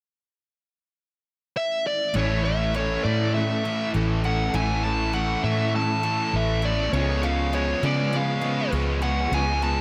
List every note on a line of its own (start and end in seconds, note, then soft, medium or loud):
1.57 1.86 E5 loud
1.87 2.16 D5 loud
2.14 2.96 A1 loud
2.14 3.34 A2 medium
2.14 2.73 E3 medium
2.14 2.75 E3 medium
2.14 2.48 A3 medium
2.14 2.47 C#4 medium
2.14 2.44 E4 loud
2.14 6.90 A4 medium
2.14 2.43 A4 medium
2.14 2.44 C#5 medium
2.14 6.90 E5 medium
2.14 9.81 C#6 medium
2.43 2.76 C#4 medium
2.43 2.78 E4 medium
2.43 2.78 A4 medium
2.43 2.75 E5 medium
2.48 2.76 A3 medium
2.74 3.64 E3 medium
2.74 3.35 E3 medium
2.74 3.08 A3 medium
2.74 3.07 C#4 medium
2.74 3.03 C#5 medium
2.78 3.05 E4 medium
2.78 3.63 A4 medium
3.04 3.85 A2 medium
3.04 4.53 A2 medium
3.04 4.53 E3 medium
3.04 3.36 C#4 medium
3.04 3.36 E4 medium
3.04 3.34 D5 medium
3.08 3.35 A3 medium
3.34 3.94 A2 medium
3.34 3.92 E3 medium
3.34 3.66 A3 loud
3.34 3.66 C#4 loud
3.34 3.63 E4 loud
3.34 3.90 E5 medium
3.64 4.23 E3 medium
3.64 3.93 A3 medium
3.64 3.95 C#4 medium
3.64 3.95 E4 medium
3.64 3.96 A4 medium
3.93 4.48 A1 medium
3.93 4.53 E3 medium
3.93 4.27 A3 medium
3.93 7.26 C#4 medium
3.93 4.25 C#4 medium
3.93 4.24 E4 medium
3.93 4.23 A4 medium
4.24 4.53 E3 medium
4.24 4.54 A3 medium
4.24 4.56 C#4 medium
4.24 4.56 E4 medium
4.24 4.56 A4 medium
4.24 4.56 F#5 loud
4.54 5.35 A1 loud
4.54 5.14 A2 medium
4.54 5.12 E3 medium
4.54 5.13 E3 medium
4.54 4.87 A3 loud
4.54 4.86 C#4 medium
4.54 4.84 E4 loud
4.54 4.81 A4 medium
4.54 4.84 G#5 loud
4.82 5.16 E4 medium
4.82 5.15 A4 medium
4.82 5.12 A5 loud
4.86 5.14 A3 medium
4.86 5.16 C#4 medium
5.14 5.73 E3 medium
5.14 5.46 A3 medium
5.14 5.45 C#4 medium
5.14 5.43 E4 medium
5.14 6.02 A4 medium
5.14 5.44 F#5 loud
5.44 6.24 A2 medium
5.44 6.93 A2 medium
5.44 6.92 E3 medium
5.44 5.74 A3 medium
5.44 5.76 C#4 medium
5.44 5.76 E4 medium
5.44 5.72 E5 medium
5.74 6.34 A2 loud
5.74 6.31 E3 medium
5.74 6.04 A3 medium
5.74 6.04 C#4 loud
5.74 6.01 E4 medium
5.74 6.36 A5 medium
6.02 6.61 E3 medium
6.02 6.32 A3 medium
6.02 6.35 C#4 medium
6.02 6.35 E4 medium
6.02 6.35 A4 medium
6.33 6.87 A1 medium
6.33 6.91 E3 medium
6.33 6.64 A3 medium
6.33 6.64 C#4 medium
6.33 6.61 E4 medium
6.33 6.62 A4 medium
6.33 6.63 E5 loud
6.62 6.93 E3 medium
6.62 6.93 A3 medium
6.62 6.94 C#4 medium
6.62 6.91 E4 medium
6.62 6.91 A4 medium
6.62 6.93 D5 loud
6.92 7.74 C#2 loud
6.92 7.52 C#3 medium
6.92 7.52 F3 medium
6.92 7.51 F3 medium
6.92 7.25 G#3 medium
6.92 7.23 B3 loud
6.92 7.22 F4 loud
6.92 9.81 B4 medium
6.92 7.24 C#5 loud
6.96 7.82 C#4 loud
6.96 7.22 G#4 loud
7.22 7.53 G#3 medium
7.22 8.11 B3 medium
7.22 7.55 B3 medium
7.22 7.55 F4 medium
7.22 7.55 G#4 medium
7.22 7.51 F5 medium
7.52 8.12 C#3 medium
7.52 8.70 F3 medium
7.52 8.40 F3 medium
7.52 7.85 G#3 medium
7.52 7.84 B3 medium
7.52 7.82 F4 medium
7.52 8.41 G#4 medium
7.52 7.85 C#5 medium
7.82 8.63 C#3 medium
7.82 9.30 C#3 medium
7.82 8.13 G#3 medium
7.82 8.14 B3 medium
7.82 9.33 C#4 medium
7.82 8.72 C#4 medium
7.82 8.14 F4 medium
7.82 8.15 D5 medium
8.12 8.71 C#3 loud
8.12 8.43 G#3 loud
8.12 9.61 B3 medium
8.12 8.42 B3 medium
8.12 8.40 F4 loud
8.16 8.70 F5 medium
8.41 9.01 F3 medium
8.41 8.72 G#3 soft
8.41 8.73 B3 medium
8.41 8.74 F4 medium
8.41 8.74 G#4 medium
8.71 9.26 C#2 medium
8.71 9.30 C#3 medium
8.71 9.31 F3 medium
8.71 9.04 G#3 medium
8.71 9.03 B3 medium
8.71 9.81 C#4 medium
8.71 9.01 F4 medium
8.71 9.01 G#4 medium
9.02 9.31 F3 medium
9.02 9.31 G#3 medium
9.02 9.32 B3 medium
9.02 9.34 F4 medium
9.02 9.34 G#4 medium
9.02 9.33 F#5 loud
9.31 9.81 C#2 loud
9.31 9.81 C#3 medium
9.31 9.81 F3 medium
9.31 9.64 G#3 medium
9.31 9.62 B3 medium
9.31 9.81 C#4 loud
9.31 9.60 F4 loud
9.31 9.61 G#4 medium
9.31 9.63 G#5 loud
9.61 9.81 G#3 medium
9.61 9.81 B3 medium
9.61 9.81 F4 medium
9.61 9.81 G#4 medium
9.61 9.81 A5 loud